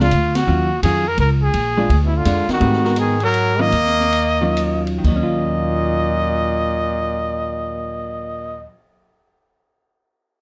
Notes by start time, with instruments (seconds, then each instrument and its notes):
Already playing: upright bass C#2
0.01 hollow-body jazz guitar G#3 D4 F4, trumpet F4
0.11 upright bass D2, kick, hi-hat pedal, ride
0.35 trumpet F#4, snare, ride
0.47 upright bass D#2, hollow-body jazz guitar D#3 F#3 C#4 F4
0.83 upright bass F2, hollow-body jazz guitar D#3 F#3 C#4 F4, trumpet G#4, kick, hi-hat pedal, ride
1.08 trumpet A#4
1.18 upright bass C#2, trumpet A#4, kick, ride
1.43 trumpet G#4
1.54 upright bass A#1, kick, ride
1.77 hollow-body jazz guitar G#3 D4 F4
1.89 upright bass D2, kick, ride
2.03 trombone B2, trumpet E4
2.16 trombone D3, trumpet F4
2.25 upright bass F2, hollow-body jazz guitar G#3 D4 F4, kick, hi-hat pedal, ride
2.48 trombone D#3, muted upright bass stroke, snare, ride
2.53 trumpet F#4
2.60 upright bass G#2, hollow-body jazz guitar A3 C4 G4 B4, kick, ride
2.73 snare
2.84 hollow-body jazz guitar G#3 B3 F#4 A#4, snare
2.96 trombone D#3, trumpet G#4, hi-hat pedal, ride
3.20 trombone F#3, ride
3.24 trumpet A#4
3.34 ride
3.59 hollow-body jazz guitar D#3 F#3 C#4 F4, trombone A#3, trumpet D#5
3.72 upright bass D#2, kick, ride
3.86 snare
4.00 snare
4.12 ride
4.41 hollow-body jazz guitar D#3 F#3 C#4 F4
4.57 hi-hat pedal, ride
4.87 ride
4.98 hollow-body jazz guitar D#3
5.03 upright bass D#2, trombone A#2, trumpet D#5, kick, crash
5.08 hollow-body jazz guitar F#3
5.16 hollow-body jazz guitar C#4
5.23 hollow-body jazz guitar F4
5.37 cymbal swell